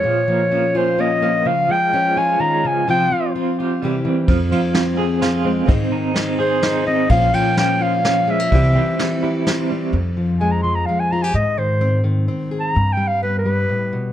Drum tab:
RD |------|------|------|xxx-x-|
SD |------|------|------|--o-o-|
BD |------|------|------|o-----|

RD |x-x-x-|xxx-x-|x-x-x-|------|
SD |--o-o-|--o-o-|--o-o-|------|
BD |o-----|o-----|o-----|------|

RD |------|------|
SD |------|------|
BD |------|------|